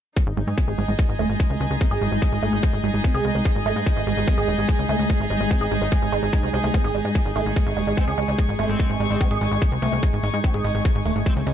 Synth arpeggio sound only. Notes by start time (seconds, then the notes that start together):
0.37 G#3
0.47 G#3
0.58 C4
0.68 G#4
0.78 G#3
0.88 G#3
1.19 A3
1.60 G#3
1.71 G#3
1.81 C4
1.91 G#4
2.01 G#3
2.12 G#3
2.43 A3
2.84 G#3
2.94 G#3
3.04 C4
3.14 G#4
3.25 G#3
3.35 G#3
3.66 A3
4.07 G#3
4.17 G#3
4.28 C4
4.38 G#4
4.48 G#3
4.58 G#3
4.89 A3
5.30 G#3
5.41 G#3
5.51 C4
5.61 G#4
5.71 G#3
5.82 G#3
6.12 G#3
6.23 G#3
6.33 D#4
6.54 G#3
6.64 A3
6.74 C4
6.84 G#4
6.95 G#3
7.05 G#3
7.36 A3
7.77 G#3
7.87 G#3
7.97 C4
8.08 G#4
8.18 G#3
8.28 G#3
8.59 A3
9.00 G#3
9.10 G#3
9.21 C4
9.31 G#4
9.41 G#3
9.51 G#3
9.82 A3
10.23 G#3
10.34 G#3
10.44 C4
10.54 G#4
10.65 G#3
10.75 G#3
11.06 A3
11.47 G#3